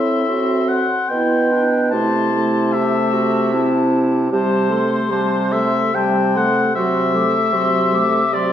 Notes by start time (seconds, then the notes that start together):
Already playing: A2 C4 E4 E5 C6
0.28 C4 F#4
0.69 F#5
1.08 B2 B3 E4 G5
1.50 D4
1.91 C3 A3 E4 A5 C6
2.34 A3
2.73 G4 E5 A5
3.12 F#4
3.53 C4 E4 A5
4.30 C3 G3 G4 C5 A5
4.70 A3 A4 C6
5.10 C3 G3 G4 A5
5.51 A3 A4 E5 C6
5.94 C3 G3 G4 G5 A5
6.34 A3 A4 F#5 C6
6.75 C3 F#3 F#4 E5 C6
7.14 A3 A4 D6
7.52 C3 F#3 F#4 C6
7.92 A3 A4 D6
8.32 C3 F#3 F#4 D5 C6